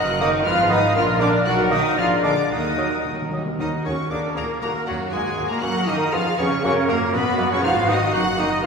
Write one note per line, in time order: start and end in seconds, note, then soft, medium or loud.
0.00 0.40 F#1 loud
0.00 0.21 F#3 loud
0.00 0.46 F#3 loud
0.00 0.92 D#4 loud
0.00 0.45 A#4 loud
0.00 0.44 D#5 loud
0.00 0.21 F#6 loud
0.09 0.21 D#4 medium
0.09 0.20 F#4 medium
0.19 0.46 D#3 loud
0.19 0.30 A#3 loud
0.19 0.45 D#4 loud
0.19 0.34 F#4 medium
0.19 0.34 A#4 medium
0.19 0.25 D#5 loud
0.19 0.29 D#5 loud
0.19 0.29 D#6 loud
0.34 0.46 D#4 medium
0.34 0.47 F#4 medium
0.45 0.90 G#1 loud
0.45 0.71 F3 loud
0.45 0.96 G#3 loud
0.45 0.71 F4 loud
0.45 0.58 F4 loud
0.45 0.96 B4 loud
0.45 0.58 B4 loud
0.45 0.70 F5 loud
0.45 0.95 F5 loud
0.45 0.70 F6 loud
0.58 0.71 D#4 medium
0.58 0.71 G#4 loud
0.70 0.78 D#3 loud
0.70 0.79 B3 loud
0.70 0.96 D#4 loud
0.70 0.83 F4 loud
0.70 0.83 B4 loud
0.70 0.79 D#5 loud
0.70 0.96 D#5 loud
0.70 0.96 D#6 loud
0.82 0.95 D#4 medium
0.82 0.95 G#4 medium
0.95 1.40 A#1 loud
0.95 1.04 F3 loud
0.95 1.31 A#3 loud
0.95 1.31 D4 loud
0.95 1.07 F4 loud
0.95 1.21 F4 loud
0.95 1.07 A#4 loud
0.95 1.44 A#4 loud
0.95 1.68 A#4 loud
0.95 1.02 F5 loud
0.95 1.04 F6 loud
1.06 1.20 D4 medium
1.06 1.20 D5 medium
1.19 1.27 D3 loud
1.19 1.29 A#3 loud
1.19 1.46 D4 loud
1.19 1.32 F4 medium
1.19 1.33 A#4 medium
1.19 1.29 D5 loud
1.19 1.46 D5 loud
1.19 1.29 D6 loud
1.32 1.45 D4 medium
1.32 1.45 D5 medium
1.44 1.91 B1 loud
1.44 1.70 F#3 loud
1.44 1.94 F#3 loud
1.44 1.94 D#4 loud
1.44 1.57 F#4 loud
1.44 1.71 F#4 loud
1.44 1.57 A#4 loud
1.44 1.94 A#4 loud
1.44 1.71 F#5 loud
1.44 1.53 F#6 loud
1.58 1.71 D#4 loud
1.58 1.71 B4 loud
1.70 1.97 D#3 loud
1.70 1.80 A#3 loud
1.70 1.97 D#4 loud
1.70 1.84 F#4 medium
1.70 1.84 A#4 loud
1.70 1.80 D#5 loud
1.70 1.98 D#5 loud
1.70 1.97 D#6 loud
1.84 1.98 D#4 medium
1.84 1.97 B4 medium
1.96 2.45 A#1 loud
1.96 2.04 F3 loud
1.96 2.51 G#3 loud
1.96 2.51 D4 loud
1.96 2.24 F4 loud
1.96 2.10 F4 loud
1.96 2.10 G#4 medium
1.96 2.35 A#4 medium
1.96 2.47 D5 loud
1.96 2.24 F5 loud
1.96 2.06 F6 loud
2.11 2.25 D4 medium
2.11 2.25 A#4 medium
2.23 2.50 D3 loud
2.23 2.33 G#3 medium
2.23 2.31 D4 loud
2.23 2.38 F4 medium
2.23 2.38 G#4 medium
2.23 2.33 D5 medium
2.23 2.51 D5 loud
2.23 2.51 D6 loud
2.39 2.52 D4 medium
2.39 2.52 A#4 medium
2.50 2.99 D#2 loud
2.50 3.04 D#3 loud
2.50 3.33 F#3 medium
2.50 2.64 A#3 medium
2.50 3.04 D#4 loud
2.50 3.34 D#4 medium
2.50 2.64 F#4 medium
2.50 3.31 A#4 medium
2.50 3.04 D#5 loud
2.50 3.32 F#5 loud
2.50 3.05 D#6 loud
2.60 2.66 D#3 soft
2.65 2.74 D#3 medium
2.65 2.79 D#4 medium
2.65 2.79 A#4 medium
2.75 2.82 D#3 medium
2.75 2.88 F#3 medium
2.75 2.93 A#3 medium
2.75 2.92 F#4 medium
2.75 2.88 D#5 medium
2.83 2.89 D#3 medium
2.91 2.97 D#3 medium
2.91 3.06 D#4 medium
2.91 3.06 A#4 medium
2.98 3.04 D#3 medium
3.05 3.54 D#2 medium
3.05 3.12 D#3 medium
3.05 3.19 A#3 medium
3.05 3.19 F#4 medium
3.13 3.21 D#3 loud
3.20 3.28 D#3 medium
3.20 3.33 D#4 medium
3.20 3.34 A#4 medium
3.29 3.36 D#3 loud
3.29 3.42 F#3 medium
3.29 3.47 A#3 medium
3.29 3.47 F#4 medium
3.33 3.43 D#5 medium
3.38 3.44 D#3 loud
3.46 3.54 D#3 loud
3.46 3.60 D#4 medium
3.46 3.60 A#4 medium
3.58 3.68 D#2 medium
3.58 4.07 D#3 loud
3.58 3.68 D#3 medium
3.58 3.72 F#3 medium
3.58 3.72 D#4 medium
3.58 3.84 D#4 loud
3.58 4.07 F#4 medium
3.58 3.72 A#4 medium
3.58 3.84 D#5 loud
3.58 3.68 D#5 loud
3.58 3.68 D#6 loud
3.85 3.95 D#2 medium
3.85 3.94 C#3 medium
3.85 3.97 F#3 medium
3.85 3.98 C#4 medium
3.85 4.12 C#4 medium
3.85 3.97 A#4 medium
3.85 3.91 C#5 medium
3.85 3.94 C#5 loud
3.85 4.11 C#6 loud
4.10 4.20 D2 medium
4.10 4.20 D3 medium
4.10 4.22 A#3 medium
4.10 4.38 D4 loud
4.10 4.37 D4 loud
4.10 4.22 G#4 medium
4.10 4.61 A#4 medium
4.10 4.36 D5 loud
4.10 4.37 D5 medium
4.10 4.18 D6 loud
4.35 4.45 D2 medium
4.35 4.61 A#2 loud
4.35 4.61 A#3 medium
4.35 4.48 A#3 medium
4.35 4.61 A#3 medium
4.35 4.47 G#4 medium
4.35 4.43 A#4 medium
4.35 4.62 A#4 medium
4.35 4.44 A#5 loud
4.61 4.71 D#2 medium
4.61 4.71 A#2 medium
4.61 5.34 D#3 loud
4.61 4.74 A#3 loud
4.61 4.74 A#3 medium
4.61 4.74 F#4 medium
4.61 5.63 F#4 loud
4.61 4.88 A#4 loud
4.61 4.70 A#5 loud
4.87 4.97 D#2 medium
4.87 5.13 F#2 loud
4.87 4.99 F#3 medium
4.87 5.13 F#3 loud
4.87 4.99 A#3 medium
4.87 4.99 F#4 medium
4.87 4.93 F#4 medium
4.87 5.14 F#4 loud
4.87 4.95 F#5 loud
5.12 5.22 D#2 medium
5.12 5.51 G#2 loud
5.12 5.49 G#3 loud
5.12 5.50 G#3 loud
5.12 5.24 A#3 medium
5.12 5.25 F#4 medium
5.12 5.50 G#4 loud
5.12 5.51 G#4 loud
5.12 5.49 G#5 loud
5.37 5.46 D#2 medium
5.37 5.48 A#3 medium
5.37 5.50 F#4 medium
5.50 5.63 A#2 medium
5.50 5.63 A#3 loud
5.50 5.64 A#3 loud
5.50 5.63 A#4 loud
5.50 5.63 A#5 loud
5.62 5.71 F#2 loud
5.62 5.88 F#3 loud
5.62 5.74 A#3 medium
5.62 5.74 C#4 medium
5.62 5.90 F#4 loud
5.62 5.88 F#4 loud
5.62 6.13 A#4 loud
5.62 5.88 F#5 loud
5.62 5.88 F#6 loud
5.87 5.96 F#2 medium
5.87 6.14 D#3 loud
5.87 5.99 A#3 medium
5.87 6.00 C#4 medium
5.87 6.13 D#4 loud
5.87 6.15 D#4 loud
5.87 5.95 D#5 loud
5.87 6.13 D#5 loud
5.87 6.14 D#6 loud
6.13 6.22 F2 loud
6.13 6.39 F3 loud
6.13 6.25 B3 medium
6.13 6.26 C#4 loud
6.13 6.38 F4 loud
6.13 6.39 F4 loud
6.13 6.64 G#4 loud
6.13 6.39 F5 loud
6.13 6.40 F5 loud
6.13 6.40 F6 loud
6.38 6.47 F2 loud
6.38 6.63 C#3 loud
6.38 6.50 B3 medium
6.38 6.64 C#4 loud
6.38 6.51 C#4 loud
6.38 6.51 C#4 medium
6.38 6.44 C#5 loud
6.38 6.63 C#5 loud
6.38 6.63 C#6 loud
6.63 6.72 F#2 loud
6.63 6.89 C#3 loud
6.63 6.75 A#3 medium
6.63 6.75 C#4 loud
6.63 6.91 C#4 loud
6.63 6.76 F#4 loud
6.63 7.14 A#4 loud
6.63 6.72 C#5 loud
6.63 6.89 C#5 loud
6.63 6.72 C#6 loud
6.87 6.97 F#2 loud
6.87 7.14 A#2 loud
6.87 6.99 A#3 loud
6.87 7.00 A#3 loud
6.87 7.15 A#3 loud
6.87 7.01 F#4 medium
6.87 7.13 A#4 loud
6.87 7.14 A#4 loud
6.87 6.97 A#5 loud
7.13 7.22 F#2 loud
7.13 7.52 B2 loud
7.13 7.25 A#3 medium
7.13 7.50 B3 loud
7.13 7.51 B3 loud
7.13 8.64 F#4 loud
7.13 7.26 F#4 loud
7.13 7.50 B4 loud
7.13 7.51 B4 loud
7.13 7.51 B5 loud
7.37 7.47 F#2 loud
7.37 7.49 A#3 loud
7.37 7.49 F#4 loud
7.50 7.64 C#3 loud
7.50 7.63 C#4 loud
7.50 7.57 C#4 loud
7.50 7.63 C#5 loud
7.50 7.64 C#5 loud
7.50 7.64 C#6 loud
7.62 8.11 G#1 loud
7.62 7.89 F3 loud
7.62 7.73 B3 loud
7.62 7.75 D#4 loud
7.62 7.75 F4 loud
7.62 7.88 F4 loud
7.62 7.88 F5 loud
7.62 7.89 F5 loud
7.62 7.71 F6 loud
7.87 8.14 D#3 loud
7.87 7.99 B3 loud
7.87 7.99 D#4 loud
7.87 8.13 D#4 loud
7.87 8.14 D#5 loud
7.87 8.15 D#5 loud
7.87 8.14 D#6 loud
8.12 8.64 F#1 loud
8.12 8.22 F#3 loud
8.12 8.24 A#3 medium
8.12 8.25 D#4 loud
8.12 8.38 F#4 loud
8.12 8.26 F#4 loud
8.12 8.18 F#5 loud
8.12 8.39 F#5 loud
8.12 8.39 F#6 loud
8.37 8.48 D#3 loud
8.37 8.49 A#3 medium
8.37 8.63 D#4 loud
8.37 8.50 D#4 medium
8.37 8.64 D#4 loud
8.37 8.63 D#5 loud
8.37 8.64 D#6 loud
8.41 8.65 D#5 loud
8.62 8.66 B3 loud
8.62 8.66 F5 loud